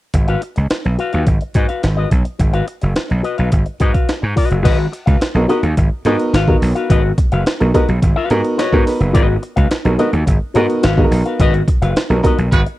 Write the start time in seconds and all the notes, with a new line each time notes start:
0.14 G#1, muted clean electric guitar stroke, kick, closed hi-hat
0.28 F#4 B4 F5, closed hi-hat
0.42 muted clean electric guitar stroke, closed hi-hat
0.56 C#2, muted clean electric guitar stroke, closed hi-hat
0.70 muted clean electric guitar stroke, muted slap bass stroke, snare, closed hi-hat
0.85 B1, muted clean electric guitar stroke, closed hi-hat
0.98 F#4 B4 F5, closed hi-hat
1.13 D#2 F#4 B4 F5, closed hi-hat
1.27 G#1, muted clean electric guitar stroke, kick, closed hi-hat
1.41 muted clean electric guitar stroke, closed hi-hat
1.54 G#2 F#4 B4 D#5, kick, closed hi-hat
1.69 F#4 B4 F5, closed hi-hat
1.83 G#1, muted clean electric guitar stroke, snare, closed hi-hat
1.97 F#4 B4 D#5
2.11 B1, kick, closed hi-hat
2.25 muted clean electric guitar stroke, closed hi-hat
2.39 G#1, muted clean electric guitar stroke, kick, closed hi-hat
2.53 F#4 B4 F5, closed hi-hat
2.67 muted clean electric guitar stroke, closed hi-hat
2.82 F#1, muted clean electric guitar stroke, closed hi-hat
2.95 muted clean electric guitar stroke, snare, closed hi-hat
3.09 B1, muted clean electric guitar stroke, closed hi-hat
3.23 F#4 B4 D#5, closed hi-hat
3.38 B1 F#4 B4 F5, closed hi-hat
3.52 G#1, muted clean electric guitar stroke, kick, closed hi-hat
3.66 muted clean electric guitar stroke, closed hi-hat
3.80 G#2 F#4 B4 D#5, kick, closed hi-hat
3.94 F#4 B4 F5, kick, closed hi-hat
4.09 snare, closed hi-hat
4.22 G#2, muted clean electric guitar stroke
4.36 F#4 B4 D#5, kick, open hi-hat
4.50 F#1, muted clean electric guitar stroke, closed hi-hat
4.63 G#1 F#4 B4 D#5, kick, closed hi-hat, crash
4.79 muted clean electric guitar stroke
4.92 muted clean electric guitar stroke, closed hi-hat
5.06 C#2 F#4 B4 F5, kick, closed hi-hat
5.21 muted clean electric guitar stroke, snare, closed hi-hat
5.35 B1 B3 D#4 F#4 A#4, closed hi-hat
5.48 B3 D#4 F#4 A#4 B4 D#5, closed hi-hat
5.63 D#2 F#4 A#4, muted clean electric guitar stroke, closed hi-hat
5.77 G#1, muted clean electric guitar stroke, kick, closed hi-hat
6.05 G#2 B3 D#4 F#4 A#4 B4 D#5, closed hi-hat
6.20 muted clean electric guitar stroke, closed hi-hat
6.33 G#1 F#4 B4 F5, snare, closed hi-hat
6.48 B3 D#4 F#4 A#4, kick
6.62 B1, muted clean electric guitar stroke, snare, open hi-hat
6.75 F#4 B4 F5, closed hi-hat
6.90 G#1 F#4 B4 D#5, kick, closed hi-hat
7.04 muted clean electric guitar stroke
7.18 muted clean electric guitar stroke, kick, closed hi-hat
7.32 F#1 F#4 B4 F5, closed hi-hat
7.46 muted clean electric guitar stroke, snare, closed hi-hat
7.60 B1 B3 D#4 F#4 A#4, closed hi-hat
7.74 B3 D#4 F#4 A#4 B4 D#5, kick, closed hi-hat
7.88 B1 F#4 A#4, muted clean electric guitar stroke, closed hi-hat
8.02 G#1, muted clean electric guitar stroke, kick, closed hi-hat
8.16 F#4 B4 F5
8.30 G#2 B3 D#4 F#4 A#4, closed hi-hat
8.44 muted clean electric guitar stroke, closed hi-hat
8.58 F#4 B4 C#5 D#5, snare, closed hi-hat
8.73 G#2 B3 D#4 F#4 A#4, kick
8.86 B4, muted clean electric guitar stroke, snare, open hi-hat
9.00 F#1, muted clean electric guitar stroke, closed hi-hat
9.13 G#1 F#4 B4 D#5, kick, closed hi-hat
9.28 muted clean electric guitar stroke
9.42 muted clean electric guitar stroke, closed hi-hat
9.56 C#2 F#4 B4 F5, kick, closed hi-hat
9.70 muted clean electric guitar stroke, snare, closed hi-hat
9.85 B1 B3 D#4 F#4 A#4, closed hi-hat
9.98 B3 D#4 F#4 A#4 B4 D#5, closed hi-hat
10.12 D#2 F#4 A#4, muted clean electric guitar stroke, closed hi-hat
10.26 G#1, muted clean electric guitar stroke, kick, closed hi-hat
10.54 G#2 B3 D#4 F#4 A#4 B4 D#5, closed hi-hat
10.68 muted clean electric guitar stroke, closed hi-hat
10.82 G#1 F#4 B4 F5, snare, closed hi-hat
10.97 B3 D#4 F#4 G#4, kick
11.04 A#4
11.11 B1, muted clean electric guitar stroke, snare, open hi-hat
11.26 F#4 B4 F5, closed hi-hat
11.40 G#1 F#4 B4 D#5, kick, closed hi-hat
11.54 muted clean electric guitar stroke, closed hi-hat
11.68 muted clean electric guitar stroke, kick, closed hi-hat
11.82 F#1 F#4 B4 F5, closed hi-hat
11.96 muted clean electric guitar stroke, snare, closed hi-hat
12.10 B1 B3 D#4 F#4 A#4, closed hi-hat
12.23 B3 D#4 F#4 A#4 B4 D#5, kick, closed hi-hat
12.38 B1 F#4 A#4, closed hi-hat
12.51 G#1 G#3 B3 F#4 B4, kick, closed hi-hat
12.66 muted clean electric guitar stroke, closed hi-hat